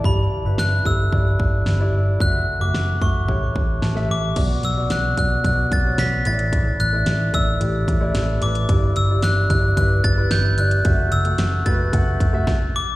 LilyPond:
<<
  \new Staff \with { instrumentName = "Glockenspiel" } { \time 4/4 \key b \minor \tempo 4 = 111 b''4 fis'''8 e'''2~ e'''8 | fis'''8. d'''8. cis'''2 d'''8~ | d'''8 e'''8 fis'''8 fis'''8 fis'''8 a'''8 b'''8 a'''8~ | a'''8 fis'''4 e'''2 d'''8~ |
d'''8 e'''8 fis'''8 fis'''8 fis'''8 a'''8 g'''8 fis'''8~ | fis'''8 e'''4 a'''2 d'''8 | }
  \new Staff \with { instrumentName = "Grand piano" } { \time 4/4 \key b \minor << { r1 | r2. a''4 | r1 | r1 |
r1 | r1 | } \\ { <g e' d''>8. <g e' b'>8. <g e' a'>8 <g e' d''>4~ <g e' d''>16 <g e' d''>8. | <a fis' e''>8. <a fis' e''>8. <a fis' e''>8 <a g' cis''>4~ <a g' cis''>16 <a g' e''>8. | <b fis' d''>8. <b fis' d''>8. <b fis' d''>8 <b fis' d''>8. <b fis' cis''>8. <a e' cis'' d''>8~ | <a e' cis'' d''>8. <a e' d''>8. <a e' d''>8 <a e' g'>8. <a e' d''>8. <a e' b'>8 |
<g e' d''>8. <g e' d''>8. <g e' d''>8 <g e' b'>8. <g e' b'>8. <g e' d''>8 | <a fis' e''>8. <a fis' fis''>8. <a fis' b'>8 <a fis' fis''>8. <a fis' e''>16 r4 | } >> }
  \new Staff \with { instrumentName = "Grand piano" } { \clef bass \time 4/4 \key b \minor g,4. r2 r8 | r2 a,4. r8 | b,4. r2 a,8~ | a,4 r2. |
g,4. r2 r8 | r1 | }
  \new Staff \with { instrumentName = "Picked electric bass" } { \clef bass \time 4/4 \key b \minor g,,8 r16 g,,16 g,,8 g,,8 g,,8 g,,8 g,,8 g,,8 | fis,,8 r16 fis,,16 fis,,8 fis,,8 a,,8 a,,8 a,,8 a,,8 | b,,8 b,,8 b,,8 b,,8 b,,8 b,,8 b,,8 a,,8~ | a,,8 a,,8 a,,8 a,,8 a,,8 a,,8 a,,8 a,,8 |
g,,8 g,,8 g,,8 g,,8 g,,8 g,,8 g,,8 g,,8 | fis,,8 fis,,8 fis,,8 fis,,8 fis,,8 fis,,8 r4 | }
  \new DrumStaff \with { instrumentName = "Drums" } \drummode { \time 4/4 bd4 sn8 bd8 bd8 bd8 sn4 | bd4 sn8 bd8 bd8 bd8 sn16 sn8. | <cymc hh bd>8 hh8 <hh sn>8 <hh bd>8 <hh bd>8 <hh bd>8 <hh sn>8 hh16 hh16 | <hh bd>8 hh8 <hh sn>8 <hh bd>8 hh8 <hh bd>8 <hh sn>8 hh16 hh16 |
<hh bd>8 hh8 <hh sn>8 <hh bd>8 <hh bd>8 <hh bd>8 <hh sn>8 hh16 hh16 | <hh bd>8 hh16 hh16 <hh sn>8 <hh bd>8 <hh bd>8 <hh bd>8 <bd sn>4 | }
>>